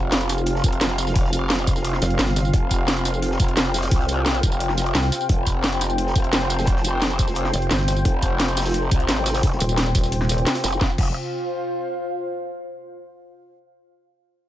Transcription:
Already playing: wobble bass F1, analog synth pad C3 C4 F4 F5, ambient pad F5
0.12 snare, closed hi-hat
0.21 closed hi-hat
0.29 snare, closed hi-hat, tambourine
0.38 tambourine
0.46 closed hi-hat
0.56 snare
0.64 wobble bass F1, kick, closed hi-hat, tambourine
0.72 closed hi-hat
0.81 snare, closed hi-hat
0.98 closed hi-hat, tambourine
1.07 snare, tambourine
1.16 kick, closed hi-hat
1.25 snare
1.33 closed hi-hat, tambourine
1.50 snare, closed hi-hat
1.59 closed hi-hat
1.67 kick, closed hi-hat, tambourine
1.76 snare, tambourine
1.85 closed hi-hat
1.93 snare
2.02 wobble bass F1, snare, closed hi-hat, tambourine
2.10 closed hi-hat
2.18 wobble bass G1, snare, closed hi-hat
2.28 snare
2.36 snare, closed hi-hat, tambourine
2.45 tambourine
2.54 wobble bass F1, ambient pad G5, kick, closed hi-hat
2.70 kick, closed hi-hat, tambourine
2.88 snare, closed hi-hat
2.97 closed hi-hat
3.05 snare, closed hi-hat, tambourine
3.14 tambourine
3.22 closed hi-hat
3.31 snare
3.39 wobble bass F1, kick, closed hi-hat, tambourine
3.48 closed hi-hat
3.56 snare, closed hi-hat
3.74 snare, closed hi-hat, tambourine
3.82 snare, closed hi-hat, tambourine
3.91 wobble bass C2, kick, closed hi-hat
4.00 snare
4.08 closed hi-hat, tambourine
4.26 snare, closed hi-hat
4.35 closed hi-hat
4.43 wobble bass F1, kick, closed hi-hat, tambourine
4.52 tambourine
4.60 closed hi-hat
4.69 snare
4.77 snare, closed hi-hat, tambourine
4.86 closed hi-hat
4.95 wobble bass C2, snare, closed hi-hat
5.04 snare
5.12 snare, closed hi-hat, tambourine
5.21 tambourine
5.29 wobble bass F1, analog synth pad C5, kick, closed hi-hat
5.47 kick, closed hi-hat, tambourine
5.63 snare, closed hi-hat
5.72 closed hi-hat
5.81 snare, closed hi-hat, tambourine
5.90 tambourine
5.98 closed hi-hat
6.07 snare
6.16 wobble bass F1, kick, closed hi-hat, tambourine
6.24 closed hi-hat
6.32 snare, closed hi-hat
6.50 closed hi-hat, tambourine
6.59 snare, tambourine
6.66 kick, closed hi-hat
6.76 snare
6.84 closed hi-hat, tambourine
7.02 snare, closed hi-hat
7.10 closed hi-hat
7.19 kick, closed hi-hat, tambourine
7.28 snare, tambourine
7.35 closed hi-hat
7.45 snare
7.53 wobble bass F1, snare, closed hi-hat, tambourine
7.62 closed hi-hat
7.71 wobble bass G1, snare, closed hi-hat
7.79 snare
7.88 snare, closed hi-hat, tambourine
7.97 tambourine
8.05 wobble bass F1, kick, closed hi-hat
8.22 kick, closed hi-hat, tambourine
8.39 snare, closed hi-hat
8.48 closed hi-hat
8.56 snare, closed hi-hat, tambourine
8.61 snare, closed hi-hat
8.65 snare, closed hi-hat, tambourine
8.69 snare, closed hi-hat
8.74 closed hi-hat
8.91 wobble bass C2, kick, closed hi-hat, tambourine
9.00 closed hi-hat
9.09 wobble bass G#1, snare, closed hi-hat
9.26 snare, closed hi-hat, tambourine
9.34 snare, closed hi-hat, tambourine
9.43 kick, closed hi-hat
9.52 snare
9.60 wobble bass D#1, closed hi-hat, tambourine
9.69 closed hi-hat, tambourine
9.78 snare, closed hi-hat
9.86 closed hi-hat
9.95 wobble bass D#1, kick, closed hi-hat, tambourine
10.03 snare, tambourine
10.12 closed hi-hat
10.21 snare
10.29 snare, closed hi-hat, tambourine
10.38 closed hi-hat
10.46 snare, closed hi-hat
10.55 snare, closed hi-hat
10.64 wobble bass F1, snare, closed hi-hat, tambourine
10.72 tambourine
10.81 wobble bass F1, analog synth pad C3 C4 F4 F5, ambient pad F4, kick, snare
10.86 ambient pad C5
10.91 ambient pad F5
10.98 wobble bass F1, kick, crash

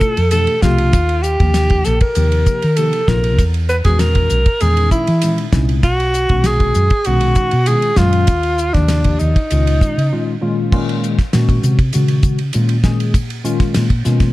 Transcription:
Already playing: tine electric piano B2 A3 D4 E4 F4, alto saxophone A4
0.00 kick, hi-hat pedal
0.17 fingered electric bass F2, ride
0.31 tine electric piano B2 E3 A3 D4 G4, alto saxophone A4, hi-hat pedal, ride
0.47 ride
0.62 fingered electric bass C2, tine electric piano B2 F3 A3 D4 G4, alto saxophone F4, kick, snare, hi-hat pedal
0.78 ride
0.93 fingered electric bass D#2, kick, hi-hat pedal, ride
1.09 ride
1.23 alto saxophone G4, hi-hat pedal
1.40 fingered electric bass D#2, tine electric piano C3 F3 A#3 D#4 G4, kick, ride
1.54 snare, hi-hat pedal, ride
1.70 kick, ride
1.84 fingered electric bass A#1, alto saxophone A4, snare, hi-hat pedal
2.01 alto saxophone A#4, kick, ride
2.15 fingered electric bass D#2, tine electric piano C3 F3 A#3 D#4 G4, hi-hat pedal, ride
2.32 ride
2.46 kick, hi-hat pedal
2.62 fingered electric bass D#3, ride
2.76 tine electric piano C3 F3 A#3 D#4 G4, alto saxophone A4, hi-hat pedal, ride
2.93 ride
3.08 fingered electric bass A#1, tine electric piano C3 F3 A#3 D#4 F4, alto saxophone A#4, kick, snare, hi-hat pedal
3.24 ride
3.38 fingered electric bass E2, kick, hi-hat pedal, ride
3.54 ride
3.69 alto saxophone B4, hi-hat pedal
3.85 fingered electric bass E2, tine electric piano A#2 D#3 G#3 C#4 F#4, alto saxophone G#4, kick, snare, ride
3.99 alto saxophone A#4, snare, hi-hat pedal, ride
4.15 kick, ride
4.30 fingered electric bass B1, hi-hat pedal
4.46 kick, ride
4.60 fingered electric bass E2, tine electric piano A#2 D#3 G#3 C#4 D#4, alto saxophone G#4, hi-hat pedal, ride
4.77 ride
4.91 alto saxophone E4, kick, hi-hat pedal
5.07 fingered electric bass E3, ride
5.22 tine electric piano A#2 D#3 G#3 C#4 D#4, hi-hat pedal, ride
5.38 ride
5.52 fingered electric bass C2, tine electric piano A#2 G#3 C#4 D#4 E4, kick, snare, hi-hat pedal
5.69 ride
5.83 fingered electric bass B1, alto saxophone F#4, kick, hi-hat pedal, ride
6.00 ride
6.14 hi-hat pedal
6.29 fingered electric bass B1, tine electric piano A#2 D#3 G#3 C#4 F#4, kick, ride
6.44 alto saxophone G#4, snare, hi-hat pedal, ride
6.60 kick, ride
6.74 fingered electric bass F#2, hi-hat pedal
6.90 kick, ride
7.04 fingered electric bass B1, tine electric piano A#2 D#3 G#3 C#4 D#4, alto saxophone F#4, hi-hat pedal, ride
7.21 ride
7.35 kick, hi-hat pedal
7.51 fingered electric bass B2, ride
7.66 tine electric piano A#2 D#3 G#3 C#4 F4, alto saxophone G#4, hi-hat pedal, ride
7.82 ride
7.96 fingered electric bass F#2, tine electric piano A#2 D#3 F#3 G#3 C#4, alto saxophone F4, kick, snare, hi-hat pedal
8.13 ride
8.27 fingered electric bass D#2, kick, hi-hat pedal, ride
8.43 ride
8.58 hi-hat pedal
8.73 fingered electric bass D#2, tine electric piano C3 D#3 F3 A#3 G4, alto saxophone D4, kick, snare, ride
8.88 snare, hi-hat pedal, ride
9.04 kick, ride
9.19 fingered electric bass D#2, alto saxophone D#4, hi-hat pedal
9.36 kick, ride
9.51 fingered electric bass C#2, tine electric piano A#2 D#3 G#3 C#4 F4, hi-hat pedal, ride
9.67 ride
9.81 kick, hi-hat pedal
9.98 fingered electric bass C#3, ride
10.13 tine electric piano A#2 D#3 G#3 C#4 F4
10.41 tine electric piano A#2 D#3 G#3 C#4 F4
10.72 tine electric piano A#2 D#3 G#3 C#4 F4, kick, crash
10.89 ride
11.04 hi-hat pedal
11.19 kick, snare, ride
11.33 tine electric piano A#2 D#3 G#3 C#4 F#4, fingered electric bass A#2, snare, hi-hat pedal, ride
11.49 kick, ride
11.63 fingered electric bass C3, hi-hat pedal
11.79 kick, ride
11.93 tine electric piano A#2 D#3 G#3 C#4 F#4, fingered electric bass C#3, hi-hat pedal, ride
12.08 ride
12.23 kick, hi-hat pedal
12.39 ride
12.53 tine electric piano A#2 D#3 G#3 C#4 F4, fingered electric bass A#2, hi-hat pedal, ride
12.69 ride
12.83 tine electric piano A#2 D#3 G#3 C#4 G#4, kick, snare, hi-hat pedal
13.00 ride
13.14 kick, hi-hat pedal, ride
13.30 ride
13.44 tine electric piano A#2 D#3 G#3 C#4 F4, hi-hat pedal
13.60 kick, snare, ride
13.74 fingered electric bass A#2, snare, hi-hat pedal, ride
13.90 kick, ride
14.05 fingered electric bass B2, tine electric piano D#3 G#3 A#3 C#4 F4, snare, hi-hat pedal
14.20 kick, snare, ride

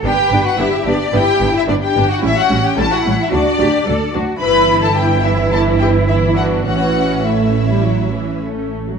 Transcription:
0.04 double bass section G1, viola section B3 D4, violin section G4 G5, cello section B4
0.30 double bass section G1, viola section B3 D4
0.44 violin section F#4 F#5
0.58 double bass section G1, viola section B3 D4, violin section E4 E5, cello section G4
0.85 double bass section G1, viola section B3 D4, violin section D4 D5
1.13 double bass section G1, viola section B3 D4, cello section E4, violin section G4 G5
1.41 double bass section G1, viola section B3 D4
1.54 violin section E4 E5
1.68 double bass section G1, viola section B3 D4, violin section D4 D5, cello section D4
1.82 violin section G4 G5
1.96 double bass section G1, viola section B3 D4
2.09 violin section F#4 F#5
2.22 double bass section A1, viola section G3 C#4, cello section C#4, violin section E4 E5
2.37 violin section F#4 F#5
2.50 double bass section A1, viola section G3 C#4
2.63 violin section G4 G5
2.77 double bass section A1, viola section G3 C#4, cello section E4, violin section A4 A5
2.91 violin section F#4 F#5
3.06 double bass section A1, viola section G3 C#4
3.18 violin section E4 E5
3.31 double bass section D2, viola section F#3 D4, violin section D4 D5, cello section F#4
3.59 double bass section D2, viola section F#3 D4, cello section G4
3.86 double bass section D2, viola section F#3 D4, cello section A4
4.14 double bass section D2, viola section F#3 D4, cello section F#4
4.41 double bass section G1, viola section E3 E4, cello section E4, violin section B4 B5
4.82 violin section A4 A5
4.96 viola section E3 E4, violin section G4 G5
5.23 violin section E4 E5
5.52 violin section A4 A5
5.80 violin section G4 G5
6.08 viola section E3 E4, violin section E4 E5
6.36 viola section D4, violin section F#4 F#5
6.67 double bass section A1, viola section E3 C#4, cello section C#4, violin section F#4 F#5
7.25 viola section A3, violin section E4 E5
7.71 viola section G3
7.85 viola section F#3
8.15 viola section E3
8.44 viola section A3
8.91 viola section F#3

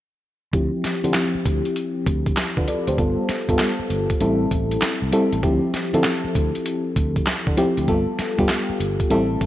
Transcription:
0.53 fretless electric bass D2, fm electric piano F3 C4 E4 G4, kick, closed hi-hat
0.84 muted fretless electric bass stroke, snare, closed hi-hat
1.03 fretless electric bass D3, fm electric piano F3 C4 E4 G4, closed hi-hat
1.14 snare, clap, closed hi-hat
1.35 muted fretless electric bass stroke
1.46 fretless electric bass D2, kick, closed hi-hat
1.65 closed hi-hat
1.76 closed hi-hat
2.06 fretless electric bass D2, kick, closed hi-hat
2.26 kick, closed hi-hat
2.37 snare, clap, closed hi-hat
2.57 fretless electric bass D3, fm electric piano F4 B4, kick
2.68 fm electric piano A4 D5, closed hi-hat
2.87 fretless electric bass D2, fm electric piano G4 C5, closed hi-hat
2.98 fretless electric bass G1, fm electric piano G3 B3 F4 A4, kick, closed hi-hat
3.29 muted fretless electric bass stroke, snare, closed hi-hat
3.48 fretless electric bass G2, fm electric piano G3 B3 F4 A4, kick, closed hi-hat
3.59 snare, clap, closed hi-hat
3.79 muted fretless electric bass stroke
3.90 fretless electric bass G1, closed hi-hat
4.10 kick, closed hi-hat
4.21 fretless electric bass A1, fm electric piano G3 C4 E4 A4, closed hi-hat
4.51 fretless electric bass A1, kick, closed hi-hat
4.71 closed hi-hat
4.81 muted fretless electric bass stroke, snare, clap, closed hi-hat
5.02 fretless electric bass C2
5.12 fm electric piano G3 C4 E4 A4, closed hi-hat
5.32 fretless electric bass A1, closed hi-hat
5.43 fretless electric bass D2, fm electric piano F3 C4 E4 G4, kick, closed hi-hat
5.74 muted fretless electric bass stroke, snare, closed hi-hat
5.93 fretless electric bass D3, fm electric piano F3 C4 E4 A4, closed hi-hat
6.04 snare, clap, closed hi-hat
6.25 muted fretless electric bass stroke
6.35 fretless electric bass D2, kick, closed hi-hat
6.55 closed hi-hat
6.66 closed hi-hat
6.96 fretless electric bass D2, kick, closed hi-hat
7.16 kick, closed hi-hat
7.26 snare, clap, closed hi-hat
7.47 fretless electric bass D3, kick
7.57 fm electric piano F3 C4 E4 G4, closed hi-hat
7.77 fretless electric bass D2, closed hi-hat
7.88 fretless electric bass G1, fm electric piano G3 B3 F4 A4, kick, closed hi-hat
8.19 muted fretless electric bass stroke, snare, closed hi-hat
8.38 fretless electric bass G2, fm electric piano G3 B3 F4 G4, kick, closed hi-hat
8.49 snare, clap, closed hi-hat
8.70 muted fretless electric bass stroke
8.80 fretless electric bass G1, closed hi-hat
9.00 kick, closed hi-hat
9.10 fretless electric bass A1, fm electric piano G3 C4 E4 A4, closed hi-hat
9.41 fretless electric bass A1, kick, closed hi-hat

